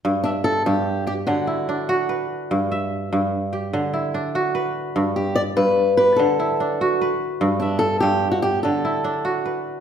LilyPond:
<<
  \new Staff \with { instrumentName = "Steel-string acoustic guitar" } { \time 12/8 \key g \major \tempo 4. = 98 r8 d'8 a'8 g'4 g'8 fis'2~ fis'8 r8 | r1. | r8 g'8 d''8 b'4 b'8 a'2~ a'8 r8 | r8 d'8 a'8 g'8. fis'16 g'8 a'2 r4 | }
  \new Staff \with { instrumentName = "Kora" } { \time 12/8 \key g \major r8 e''4. r8 g'4 e'8 d'4 b'4~ | b'8 e''4. r8 g'4 e'8 d'4 b'4~ | b'8 r2 g'4 e'8 d'4 b'4~ | b'8 e''4. r8 g'4 e'8 d'4 b'4 | }
  \new Staff \with { instrumentName = "Kora" } { \clef bass \time 12/8 \key g \major g,4 r8 g,4 r8 d4 r8 fis'4 r8 | g,4 r8 g,4 r8 d4 r8 fis'4 r8 | g,4 r8 g,4 r8 d4 r8 fis'4 r8 | g,4 r8 g,4 r8 d4 r8 fis'4 r8 | }
>>